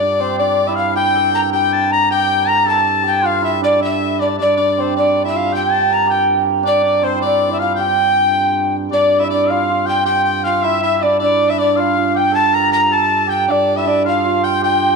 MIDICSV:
0, 0, Header, 1, 5, 480
1, 0, Start_track
1, 0, Tempo, 379507
1, 1199, Time_signature, 6, 3, 24, 8
1, 18919, End_track
2, 0, Start_track
2, 0, Title_t, "Recorder"
2, 0, Program_c, 0, 74
2, 0, Note_on_c, 0, 74, 89
2, 260, Note_on_c, 0, 72, 79
2, 279, Note_off_c, 0, 74, 0
2, 499, Note_on_c, 0, 74, 82
2, 518, Note_off_c, 0, 72, 0
2, 848, Note_on_c, 0, 76, 75
2, 867, Note_off_c, 0, 74, 0
2, 963, Note_off_c, 0, 76, 0
2, 979, Note_on_c, 0, 77, 85
2, 1193, Note_off_c, 0, 77, 0
2, 1199, Note_on_c, 0, 79, 92
2, 1646, Note_off_c, 0, 79, 0
2, 1699, Note_on_c, 0, 82, 97
2, 1775, Note_off_c, 0, 82, 0
2, 1953, Note_on_c, 0, 79, 87
2, 2421, Note_on_c, 0, 82, 91
2, 2440, Note_off_c, 0, 79, 0
2, 2667, Note_on_c, 0, 79, 96
2, 2686, Note_off_c, 0, 82, 0
2, 3145, Note_on_c, 0, 82, 93
2, 3164, Note_off_c, 0, 79, 0
2, 3374, Note_off_c, 0, 82, 0
2, 3399, Note_on_c, 0, 81, 92
2, 3829, Note_off_c, 0, 81, 0
2, 3883, Note_on_c, 0, 79, 84
2, 4122, Note_on_c, 0, 77, 92
2, 4141, Note_off_c, 0, 79, 0
2, 4343, Note_off_c, 0, 77, 0
2, 4362, Note_on_c, 0, 76, 89
2, 4438, Note_off_c, 0, 76, 0
2, 4602, Note_on_c, 0, 74, 85
2, 4808, Note_off_c, 0, 74, 0
2, 4867, Note_on_c, 0, 76, 80
2, 5285, Note_off_c, 0, 76, 0
2, 5330, Note_on_c, 0, 74, 76
2, 5406, Note_off_c, 0, 74, 0
2, 5587, Note_on_c, 0, 74, 83
2, 6070, Note_on_c, 0, 72, 75
2, 6089, Note_off_c, 0, 74, 0
2, 6278, Note_off_c, 0, 72, 0
2, 6296, Note_on_c, 0, 74, 80
2, 6607, Note_off_c, 0, 74, 0
2, 6677, Note_on_c, 0, 76, 78
2, 6783, Note_on_c, 0, 77, 76
2, 6802, Note_off_c, 0, 76, 0
2, 6994, Note_off_c, 0, 77, 0
2, 7032, Note_on_c, 0, 79, 91
2, 7498, Note_on_c, 0, 82, 93
2, 7517, Note_off_c, 0, 79, 0
2, 7733, Note_on_c, 0, 79, 81
2, 7752, Note_off_c, 0, 82, 0
2, 8143, Note_off_c, 0, 79, 0
2, 8438, Note_on_c, 0, 74, 94
2, 8905, Note_on_c, 0, 72, 81
2, 8924, Note_off_c, 0, 74, 0
2, 9136, Note_off_c, 0, 72, 0
2, 9175, Note_on_c, 0, 74, 78
2, 9487, Note_off_c, 0, 74, 0
2, 9514, Note_on_c, 0, 76, 65
2, 9613, Note_off_c, 0, 76, 0
2, 9626, Note_on_c, 0, 77, 78
2, 9870, Note_on_c, 0, 79, 84
2, 9889, Note_off_c, 0, 77, 0
2, 11058, Note_off_c, 0, 79, 0
2, 11295, Note_on_c, 0, 74, 87
2, 11685, Note_on_c, 0, 76, 76
2, 11704, Note_off_c, 0, 74, 0
2, 11786, Note_off_c, 0, 76, 0
2, 11794, Note_on_c, 0, 74, 80
2, 12019, Note_on_c, 0, 77, 82
2, 12038, Note_off_c, 0, 74, 0
2, 12492, Note_off_c, 0, 77, 0
2, 12503, Note_on_c, 0, 79, 87
2, 12718, Note_off_c, 0, 79, 0
2, 12735, Note_on_c, 0, 79, 90
2, 13177, Note_off_c, 0, 79, 0
2, 13212, Note_on_c, 0, 77, 87
2, 13475, Note_on_c, 0, 76, 86
2, 13494, Note_off_c, 0, 77, 0
2, 13946, Note_on_c, 0, 74, 77
2, 13965, Note_off_c, 0, 76, 0
2, 14175, Note_off_c, 0, 74, 0
2, 14197, Note_on_c, 0, 74, 95
2, 14548, Note_on_c, 0, 76, 78
2, 14567, Note_off_c, 0, 74, 0
2, 14656, Note_off_c, 0, 76, 0
2, 14662, Note_on_c, 0, 74, 88
2, 14919, Note_on_c, 0, 77, 98
2, 14938, Note_off_c, 0, 74, 0
2, 15393, Note_on_c, 0, 79, 92
2, 15412, Note_off_c, 0, 77, 0
2, 15607, Note_off_c, 0, 79, 0
2, 15615, Note_on_c, 0, 81, 99
2, 15865, Note_on_c, 0, 82, 100
2, 15884, Note_off_c, 0, 81, 0
2, 16090, Note_off_c, 0, 82, 0
2, 16098, Note_on_c, 0, 82, 97
2, 16352, Note_on_c, 0, 81, 93
2, 16371, Note_off_c, 0, 82, 0
2, 16816, Note_off_c, 0, 81, 0
2, 16825, Note_on_c, 0, 79, 89
2, 17085, Note_on_c, 0, 74, 88
2, 17103, Note_off_c, 0, 79, 0
2, 17408, Note_off_c, 0, 74, 0
2, 17415, Note_on_c, 0, 76, 71
2, 17548, Note_on_c, 0, 74, 92
2, 17567, Note_off_c, 0, 76, 0
2, 17773, Note_off_c, 0, 74, 0
2, 17806, Note_on_c, 0, 77, 85
2, 18266, Note_on_c, 0, 79, 86
2, 18285, Note_off_c, 0, 77, 0
2, 18491, Note_off_c, 0, 79, 0
2, 18518, Note_on_c, 0, 79, 92
2, 18919, Note_off_c, 0, 79, 0
2, 18919, End_track
3, 0, Start_track
3, 0, Title_t, "Shawm"
3, 0, Program_c, 1, 111
3, 0, Note_on_c, 1, 74, 67
3, 423, Note_off_c, 1, 74, 0
3, 486, Note_on_c, 1, 74, 71
3, 946, Note_on_c, 1, 77, 65
3, 965, Note_off_c, 1, 74, 0
3, 1193, Note_off_c, 1, 77, 0
3, 1214, Note_on_c, 1, 79, 87
3, 1878, Note_off_c, 1, 79, 0
3, 1926, Note_on_c, 1, 79, 81
3, 2191, Note_on_c, 1, 81, 82
3, 2210, Note_off_c, 1, 79, 0
3, 2416, Note_off_c, 1, 81, 0
3, 2433, Note_on_c, 1, 82, 82
3, 2642, Note_off_c, 1, 82, 0
3, 2669, Note_on_c, 1, 79, 93
3, 3140, Note_on_c, 1, 82, 82
3, 3159, Note_off_c, 1, 79, 0
3, 3372, Note_on_c, 1, 81, 80
3, 3391, Note_off_c, 1, 82, 0
3, 4109, Note_on_c, 1, 77, 75
3, 4128, Note_off_c, 1, 81, 0
3, 4356, Note_on_c, 1, 76, 69
3, 4375, Note_off_c, 1, 77, 0
3, 4580, Note_off_c, 1, 76, 0
3, 4592, Note_on_c, 1, 74, 64
3, 4802, Note_off_c, 1, 74, 0
3, 4832, Note_on_c, 1, 76, 76
3, 5308, Note_on_c, 1, 74, 62
3, 5327, Note_off_c, 1, 76, 0
3, 5537, Note_off_c, 1, 74, 0
3, 5545, Note_on_c, 1, 74, 69
3, 5759, Note_off_c, 1, 74, 0
3, 5781, Note_on_c, 1, 74, 70
3, 6221, Note_off_c, 1, 74, 0
3, 6281, Note_on_c, 1, 74, 63
3, 6599, Note_off_c, 1, 74, 0
3, 6633, Note_on_c, 1, 76, 67
3, 6984, Note_on_c, 1, 79, 83
3, 7003, Note_off_c, 1, 76, 0
3, 7233, Note_on_c, 1, 81, 76
3, 7252, Note_off_c, 1, 79, 0
3, 7700, Note_off_c, 1, 81, 0
3, 7708, Note_on_c, 1, 79, 66
3, 7921, Note_off_c, 1, 79, 0
3, 8412, Note_on_c, 1, 74, 75
3, 8633, Note_off_c, 1, 74, 0
3, 8655, Note_on_c, 1, 74, 66
3, 8897, Note_on_c, 1, 72, 63
3, 8916, Note_off_c, 1, 74, 0
3, 9115, Note_off_c, 1, 72, 0
3, 9123, Note_on_c, 1, 74, 79
3, 9598, Note_on_c, 1, 77, 74
3, 9617, Note_off_c, 1, 74, 0
3, 9799, Note_off_c, 1, 77, 0
3, 9806, Note_on_c, 1, 79, 88
3, 10976, Note_off_c, 1, 79, 0
3, 11272, Note_on_c, 1, 74, 67
3, 11631, Note_on_c, 1, 76, 70
3, 11650, Note_off_c, 1, 74, 0
3, 11750, Note_off_c, 1, 76, 0
3, 11758, Note_on_c, 1, 74, 67
3, 11988, Note_on_c, 1, 77, 68
3, 12007, Note_off_c, 1, 74, 0
3, 12469, Note_on_c, 1, 79, 77
3, 12488, Note_off_c, 1, 77, 0
3, 12709, Note_off_c, 1, 79, 0
3, 12716, Note_on_c, 1, 79, 79
3, 12944, Note_off_c, 1, 79, 0
3, 12954, Note_on_c, 1, 79, 76
3, 13206, Note_on_c, 1, 77, 75
3, 13225, Note_off_c, 1, 79, 0
3, 13451, Note_on_c, 1, 76, 73
3, 13470, Note_off_c, 1, 77, 0
3, 13683, Note_off_c, 1, 76, 0
3, 13691, Note_on_c, 1, 76, 79
3, 13871, Note_off_c, 1, 76, 0
3, 13871, Note_on_c, 1, 76, 46
3, 13930, Note_on_c, 1, 74, 66
3, 13949, Note_off_c, 1, 76, 0
3, 14147, Note_off_c, 1, 74, 0
3, 14155, Note_on_c, 1, 74, 74
3, 14527, Note_on_c, 1, 76, 76
3, 14546, Note_off_c, 1, 74, 0
3, 14650, Note_on_c, 1, 74, 69
3, 14669, Note_off_c, 1, 76, 0
3, 14877, Note_on_c, 1, 77, 73
3, 14896, Note_off_c, 1, 74, 0
3, 15360, Note_off_c, 1, 77, 0
3, 15375, Note_on_c, 1, 79, 80
3, 15624, Note_on_c, 1, 81, 92
3, 15643, Note_off_c, 1, 79, 0
3, 15860, Note_on_c, 1, 82, 79
3, 15879, Note_off_c, 1, 81, 0
3, 16091, Note_off_c, 1, 82, 0
3, 16097, Note_on_c, 1, 82, 83
3, 16201, Note_off_c, 1, 82, 0
3, 16338, Note_on_c, 1, 81, 86
3, 16815, Note_on_c, 1, 79, 76
3, 16834, Note_off_c, 1, 81, 0
3, 17040, Note_off_c, 1, 79, 0
3, 17048, Note_on_c, 1, 74, 73
3, 17413, Note_on_c, 1, 76, 82
3, 17432, Note_off_c, 1, 74, 0
3, 17766, Note_off_c, 1, 76, 0
3, 17771, Note_on_c, 1, 77, 75
3, 18211, Note_off_c, 1, 77, 0
3, 18255, Note_on_c, 1, 79, 76
3, 18470, Note_off_c, 1, 79, 0
3, 18504, Note_on_c, 1, 79, 84
3, 18919, Note_off_c, 1, 79, 0
3, 18919, End_track
4, 0, Start_track
4, 0, Title_t, "Hammered dulcimer"
4, 0, Program_c, 2, 15
4, 0, Note_on_c, 2, 65, 65
4, 0, Note_on_c, 2, 67, 60
4, 4, Note_on_c, 2, 62, 74
4, 248, Note_on_c, 2, 60, 65
4, 498, Note_off_c, 2, 62, 0
4, 503, Note_on_c, 2, 62, 72
4, 866, Note_on_c, 2, 64, 79
4, 942, Note_off_c, 2, 65, 0
4, 1203, Note_off_c, 2, 67, 0
4, 1208, Note_on_c, 2, 67, 78
4, 1459, Note_on_c, 2, 69, 79
4, 1702, Note_on_c, 2, 70, 88
4, 1777, Note_off_c, 2, 69, 0
4, 1931, Note_off_c, 2, 67, 0
4, 1936, Note_on_c, 2, 67, 75
4, 2654, Note_off_c, 2, 67, 0
4, 2659, Note_on_c, 2, 67, 77
4, 3117, Note_off_c, 2, 70, 0
4, 3122, Note_on_c, 2, 70, 76
4, 3365, Note_on_c, 2, 69, 90
4, 3441, Note_off_c, 2, 70, 0
4, 3825, Note_off_c, 2, 67, 0
4, 3830, Note_on_c, 2, 67, 71
4, 4074, Note_on_c, 2, 65, 77
4, 4150, Note_off_c, 2, 64, 0
4, 4323, Note_on_c, 2, 64, 72
4, 4399, Note_off_c, 2, 65, 0
4, 4567, Note_off_c, 2, 62, 0
4, 4572, Note_on_c, 2, 62, 73
4, 4805, Note_off_c, 2, 64, 0
4, 4810, Note_on_c, 2, 64, 79
4, 5307, Note_off_c, 2, 60, 0
4, 5316, Note_off_c, 2, 62, 0
4, 5321, Note_on_c, 2, 62, 67
4, 5548, Note_off_c, 2, 62, 0
4, 5553, Note_on_c, 2, 62, 61
4, 5781, Note_off_c, 2, 62, 0
4, 5786, Note_on_c, 2, 62, 61
4, 6039, Note_on_c, 2, 60, 66
4, 6274, Note_off_c, 2, 62, 0
4, 6279, Note_on_c, 2, 62, 70
4, 6629, Note_off_c, 2, 64, 0
4, 6634, Note_on_c, 2, 64, 71
4, 6747, Note_on_c, 2, 65, 62
4, 6823, Note_off_c, 2, 64, 0
4, 6970, Note_off_c, 2, 67, 0
4, 6975, Note_on_c, 2, 67, 68
4, 7068, Note_off_c, 2, 69, 0
4, 7462, Note_on_c, 2, 70, 75
4, 7666, Note_off_c, 2, 67, 0
4, 7671, Note_on_c, 2, 67, 80
4, 8383, Note_off_c, 2, 62, 0
4, 8388, Note_on_c, 2, 62, 75
4, 8617, Note_off_c, 2, 62, 0
4, 8622, Note_on_c, 2, 62, 64
4, 8873, Note_off_c, 2, 60, 0
4, 8878, Note_on_c, 2, 60, 70
4, 9036, Note_on_c, 2, 64, 56
4, 9112, Note_off_c, 2, 65, 0
4, 9130, Note_off_c, 2, 62, 0
4, 9135, Note_on_c, 2, 62, 75
4, 9466, Note_off_c, 2, 64, 0
4, 9471, Note_on_c, 2, 64, 67
4, 9602, Note_on_c, 2, 65, 63
4, 9678, Note_off_c, 2, 64, 0
4, 9840, Note_off_c, 2, 67, 0
4, 9845, Note_on_c, 2, 67, 68
4, 11040, Note_off_c, 2, 70, 0
4, 11289, Note_off_c, 2, 62, 0
4, 11294, Note_on_c, 2, 62, 68
4, 11632, Note_on_c, 2, 64, 73
4, 11708, Note_off_c, 2, 65, 0
4, 11784, Note_off_c, 2, 62, 0
4, 11789, Note_on_c, 2, 62, 66
4, 12025, Note_on_c, 2, 65, 70
4, 12101, Note_off_c, 2, 64, 0
4, 12259, Note_off_c, 2, 65, 0
4, 12264, Note_on_c, 2, 65, 69
4, 12473, Note_off_c, 2, 67, 0
4, 12478, Note_on_c, 2, 67, 68
4, 12709, Note_off_c, 2, 67, 0
4, 12714, Note_on_c, 2, 67, 75
4, 13228, Note_off_c, 2, 65, 0
4, 13233, Note_on_c, 2, 65, 73
4, 13460, Note_on_c, 2, 64, 79
4, 13536, Note_off_c, 2, 65, 0
4, 13693, Note_off_c, 2, 64, 0
4, 13698, Note_on_c, 2, 64, 79
4, 13938, Note_off_c, 2, 60, 0
4, 13942, Note_off_c, 2, 62, 0
4, 13947, Note_on_c, 2, 62, 73
4, 14183, Note_off_c, 2, 62, 0
4, 14188, Note_on_c, 2, 62, 76
4, 14646, Note_off_c, 2, 62, 0
4, 14651, Note_on_c, 2, 62, 65
4, 14888, Note_on_c, 2, 65, 82
4, 14964, Note_off_c, 2, 64, 0
4, 15136, Note_off_c, 2, 65, 0
4, 15141, Note_on_c, 2, 65, 72
4, 15354, Note_off_c, 2, 67, 0
4, 15359, Note_on_c, 2, 67, 79
4, 15572, Note_on_c, 2, 69, 80
4, 15843, Note_on_c, 2, 70, 87
4, 15919, Note_off_c, 2, 69, 0
4, 16074, Note_off_c, 2, 70, 0
4, 16079, Note_on_c, 2, 70, 80
4, 16321, Note_on_c, 2, 69, 78
4, 16397, Note_off_c, 2, 70, 0
4, 16777, Note_off_c, 2, 67, 0
4, 16782, Note_on_c, 2, 67, 73
4, 17039, Note_off_c, 2, 62, 0
4, 17045, Note_on_c, 2, 62, 72
4, 17415, Note_on_c, 2, 64, 66
4, 17491, Note_off_c, 2, 65, 0
4, 17527, Note_off_c, 2, 62, 0
4, 17532, Note_on_c, 2, 62, 64
4, 17783, Note_on_c, 2, 65, 74
4, 17859, Note_off_c, 2, 64, 0
4, 18017, Note_off_c, 2, 65, 0
4, 18022, Note_on_c, 2, 65, 73
4, 18478, Note_off_c, 2, 67, 0
4, 18483, Note_on_c, 2, 67, 77
4, 18919, Note_off_c, 2, 62, 0
4, 18919, Note_off_c, 2, 65, 0
4, 18919, Note_off_c, 2, 67, 0
4, 18919, Note_off_c, 2, 69, 0
4, 18919, End_track
5, 0, Start_track
5, 0, Title_t, "Pipe organ"
5, 0, Program_c, 3, 19
5, 0, Note_on_c, 3, 43, 63
5, 5550, Note_off_c, 3, 43, 0
5, 5575, Note_on_c, 3, 43, 58
5, 11239, Note_off_c, 3, 43, 0
5, 11264, Note_on_c, 3, 43, 57
5, 17042, Note_off_c, 3, 43, 0
5, 17067, Note_on_c, 3, 43, 63
5, 18919, Note_off_c, 3, 43, 0
5, 18919, End_track
0, 0, End_of_file